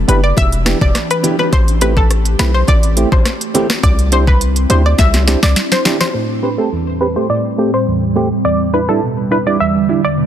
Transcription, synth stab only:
0.08 B3 D4 E4 G4
0.65 B3 D4 E4 G4
1.23 B3 D4 E4 G4
1.81 A3 C4 E4 G4
2.39 A3 C4 E4 G4
2.97 A3 C4 E4 G4
3.54 A3 C4 E4 G4
4.12 C4 D4 E4 G4
4.70 C4 D4 E4 G4
5.27 C4 D4 E4 G4
5.85 C4 D4 E4 G4
6.14 A2
6.43 C4 G4
6.58 A3 C4 G4
6.72 E2
7.01 C4 G4
7.16 A3 C4 G4
7.29 A2
7.58 A3 C4 G4
7.87 E2
8.15 A3 C4 G4
8.45 E2
8.73 D4 E4
8.89 G3 D4 E4
9.03 B2
9.31 D4 E4
9.46 G3 D4 E4
9.60 E2
9.89 G3 D4 E4
10.18 B2

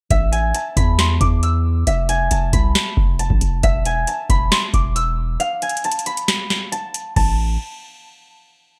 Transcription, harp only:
0.11 E5
0.32 G#5
0.55 A5
0.77 B5
0.99 C6
1.21 D6
1.43 E6
1.87 E5
2.09 G#5
2.31 A5
2.53 B5
3.19 A5
3.64 E5
3.86 G#5
4.08 A5
4.30 B5
4.52 C6
4.74 D6
4.96 E6
5.40 F5
5.62 G#5
5.85 A5
6.06 B5
6.72 A5
7.16 A5

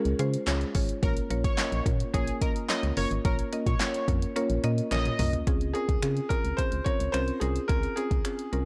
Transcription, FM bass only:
0.05 C#2
0.19 C#3
0.47 C#2
0.75 G#1
1.03 A#1
1.30 A#1
1.72 A#1
1.86 A#2
2.14 A#1
2.83 C#2
2.97 F#1
3.11 G#1
3.25 A#1
3.66 A#2
4.08 F2
4.50 A#1
4.64 A#2
4.92 A#1
5.19 C2
5.47 C#2
5.89 C#2
6.03 C#3
6.44 C#2
6.72 C#2
7.00 C#2
7.14 C2
7.42 C2
7.69 C#2
8.11 C#2
8.53 C2

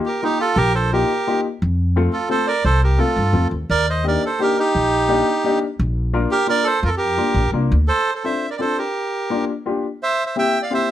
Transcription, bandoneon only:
0.06 G4 A#4
0.23 D#4 G4
0.40 F4 A4
0.57 G4 A#4
0.75 A4 C5
0.93 G4 A#4
2.13 F4 A4
2.31 A4 C5
2.47 A#4 D5
2.65 A4 C5
2.83 G4 A#4
2.98 F4 A4
3.70 A#4 D5
3.90 C5 D#5
4.07 A#4 D5
4.25 A4 C5
4.42 G4 A#4
4.59 D#4 G4
6.31 G4 A#4
6.49 A#4 D5
6.64 A4 C5
6.82 F4 A#4
6.88 A4
6.97 G4 A#4
7.88 A4 C5
8.15 A4 C5
8.24 C5 E5
8.50 A#4 D5
8.57 D5
8.61 A4 C5
8.78 G4 A#4
10.03 C5 E5
10.26 C5 E5
10.38 E5 G5
10.62 D5 F5
10.73 C5 E5

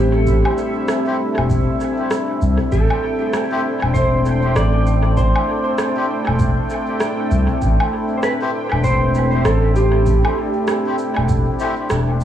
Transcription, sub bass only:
Already playing: A1
0.27 A1
1.37 E1
1.50 E1
2.42 C2
2.72 A1
3.82 E1
4.56 A1
5.17 A1
6.27 E1
6.40 E1
7.31 C2
7.62 A1
8.72 E1
9.45 A1
10.07 A1
11.17 E1
11.29 E1
11.90 E1

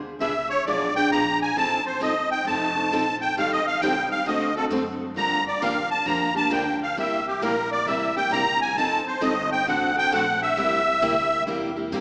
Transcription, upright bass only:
Already playing: D2
0.19 C#2
0.65 B1
1.10 A#1
1.56 A1
2.01 G1
2.45 F1
2.90 A#1
3.35 A1
3.81 C2
4.10 muted upright bass stroke
4.26 D2
4.70 F#2
5.14 G2
5.61 D#2
6.06 F2
6.50 D2
6.95 C2
7.41 A#1
7.86 A1
8.30 G1
8.75 F1
9.20 G1
9.66 A1
10.11 A#1
10.55 C2
11.01 D2
11.47 E2
11.92 G2

